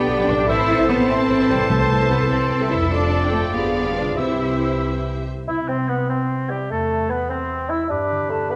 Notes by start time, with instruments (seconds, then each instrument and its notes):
Already playing: harp B2 B3 D4 G4, bassoon D3, cello section B3, violin section D4 G5, clarinet G4, french horn section G4 D5, oboe D5, flute B5
0.09 double bass section B1, viola section G4
0.18 double bass section B1, viola section G4 D5
0.27 double bass section B1, harp A2, cello section D4, viola section G4 B4, flute D6
0.35 double bass section B1, harp C4, viola section G4
0.40 harp E4
0.44 double bass section A1, bassoon E3, cello section E4, harp A4, clarinet A4
0.49 violin section C4 A5, french horn section A4 C5, viola section C5 E5, oboe C5, flute E6
0.58 double bass section A1, viola section C5
0.68 double bass section A1, viola section A4 C5
0.79 double bass section A1, viola section C5 E5
0.88 double bass section A1, cello section B3, viola section C5, flute B5
1.00 double bass section A1, viola section A4 C5
1.08 double bass section A1, cello section C4, violin section E4, viola section C5 E5, flute C6
1.29 double bass section A1, viola section A4 C5
1.39 double bass section A1, viola section C5 E5
1.49 double bass section A1, harp C3, cello section G3, viola section C5, flute G5
1.56 double bass section A1, harp C4, viola section A4
1.60 harp E4, viola section C5
1.65 harp A4, violin section C5
1.69 double bass section C2, timpani C3, cello section A3, viola section A4 E5, flute A5
1.79 double bass section C2, viola section A4 C5
1.89 double bass section C2, viola section A4
2.00 double bass section C2, viola section A4 E5
2.10 double bass section C2, cello section B3, viola section A4 C5, flute B5
2.20 double bass section C2, viola section A4
2.29 double bass section C2, cello section C4, violin section A4, viola section A4 E5, flute C6
2.50 double bass section C2, viola section A4
2.60 double bass section C2, viola section A4 E5
2.70 double bass section C2, harp F2, cello section E4, viola section A4 C5, flute E6
2.78 double bass section C2, harp D4, viola section A4
2.83 harp F4
2.87 double bass section F1, bassoon F3, harp A4, viola section A4 D5, clarinet A4, oboe D5, flute D6
2.91 cello section D4, french horn section F4 A4, violin section A5
3.22 violin section G5
3.33 harp G2, cello section A3, flute A5
3.41 harp D4
3.46 harp F4
3.50 violin section G4, harp G#4, flute B5
3.54 double bass section G1, cello section B3, french horn section F4 G#4, clarinet G#4, viola section G#4 D5, violin section F5
3.87 french horn section B4
3.96 cello section D4, flute D6
4.01 harp C3
4.05 harp C4
4.10 harp E4
4.14 timpani C3, harp G4, clarinet G4, oboe E5
4.18 double bass section C2, bassoon E3, violin section E4 E5, cello section E4, french horn section G4 C5, viola section G4 C5, flute E6
5.47 harp C3, oboe E4, bassoon E4, clarinet E4, flute E6
5.68 harp G3, oboe C4, bassoon C4, clarinet C4, flute C6
5.88 bassoon B3, oboe B3, clarinet B3, harp E4, flute B5
6.09 oboe C4, clarinet C4, bassoon C4, harp C5, flute C6
6.30 harp G4
6.49 bassoon G3, clarinet G3, harp E4, oboe G4, flute G5
6.70 harp E2, bassoon A3, clarinet A3, oboe A4, flute A5
6.90 harp E3
7.09 bassoon B3, oboe B3, clarinet B3, harp E4, flute B5
7.30 oboe C4, bassoon C4, clarinet C4, harp C5, flute C6
7.50 harp G4
7.69 bassoon E4, harp E4, clarinet E4, oboe E4, flute E6
7.89 harp G2, bassoon D4, clarinet G4, oboe B4, flute D6
8.10 harp D3
8.30 bassoon A3, harp D4, flute A5
8.50 bassoon B3, oboe B4, harp B4, flute B5